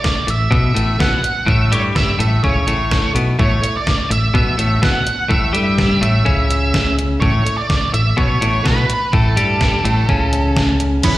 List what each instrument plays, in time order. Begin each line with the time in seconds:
Already playing: lead electric guitar D5
0.04 kick, snare
0.27 fingered electric bass A1, clean electric guitar A2, lead electric guitar E5, closed hi-hat
0.51 fingered electric bass B1, clean electric guitar B2, lead electric guitar E5, kick
0.74 fingered electric bass A1, clean electric guitar A2, closed hi-hat
0.99 fingered electric bass B1, clean electric guitar B2, lead electric guitar F#5, kick, snare
1.23 muted clean electric guitar stroke, muted fingered electric bass stroke, closed hi-hat
1.47 fingered electric bass A1, clean electric guitar A2, lead electric guitar E5, kick
1.72 fingered electric bass G2, clean electric guitar G3, lead electric guitar C#5, closed hi-hat
1.96 lead electric guitar E5, kick, snare
2.19 fingered electric bass A1, clean electric guitar A2, closed hi-hat
2.44 fingered electric bass C#2, clean electric guitar C#3, lead electric guitar C#5, kick
2.67 fingered electric bass A1, clean electric guitar A2, closed hi-hat
2.91 kick, snare
3.15 fingered electric bass B1, clean electric guitar B2, closed hi-hat
3.39 fingered electric bass A1, clean electric guitar A2, lead electric guitar C#5, kick
3.63 muted clean electric guitar stroke, muted fingered electric bass stroke, closed hi-hat
3.77 lead electric guitar D5
3.87 kick, snare
4.10 fingered electric bass A1, clean electric guitar A2, lead electric guitar E5, closed hi-hat
4.34 fingered electric bass B1, clean electric guitar B2, lead electric guitar E5, kick
4.58 fingered electric bass A1, clean electric guitar A2, closed hi-hat
4.82 fingered electric bass B1, clean electric guitar B2, lead electric guitar F#5, kick, snare
5.06 muted clean electric guitar stroke, muted fingered electric bass stroke, closed hi-hat
5.29 fingered electric bass A1, clean electric guitar A2, lead electric guitar E5, kick
5.53 fingered electric bass G2, clean electric guitar G3, closed hi-hat
5.78 kick, snare
6.01 fingered electric bass A1, clean electric guitar A2, lead electric guitar E5, closed hi-hat
6.25 fingered electric bass C#2, clean electric guitar C#3, kick
6.50 closed hi-hat
6.74 kick, snare
6.99 closed hi-hat
7.20 fingered electric bass A1, clean electric guitar A2, lead electric guitar C#5, kick
7.46 muted fingered electric bass stroke, muted clean electric guitar stroke, closed hi-hat
7.57 lead electric guitar D5
7.70 kick, snare
7.94 fingered electric bass A1, clean electric guitar A2, lead electric guitar E5, closed hi-hat
8.17 fingered electric bass B1, clean electric guitar B2, lead electric guitar C#5, kick
8.41 fingered electric bass A1, clean electric guitar A2, closed hi-hat
8.64 fingered electric bass B1, clean electric guitar B2, lead electric guitar B4, kick, snare
8.89 muted clean electric guitar stroke, muted fingered electric bass stroke, closed hi-hat
9.13 fingered electric bass A1, clean electric guitar A2, lead electric guitar A4, kick
9.37 fingered electric bass G2, clean electric guitar G3, closed hi-hat
9.61 kick, snare
9.84 fingered electric bass A1, clean electric guitar A2, closed hi-hat
10.09 fingered electric bass C#2, clean electric guitar C#3, kick
10.33 closed hi-hat
10.56 kick, snare
10.80 closed hi-hat
11.03 fingered electric bass E2, clean electric guitar E2 E3 B3 C#4, lead electric guitar B4, kick, closed hi-hat, crash